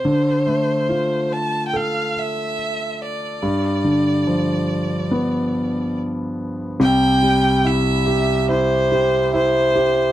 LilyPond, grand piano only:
\new Staff \with { instrumentName = "Grand piano" } { \time 4/4 \key c \major \tempo 4 = 71 d8 a8 f'4 a'2 | g,8 d8 f4 b2 | <c, c>8 g8 e'8 g'8 e'8 g'8 e'8 g'8 | }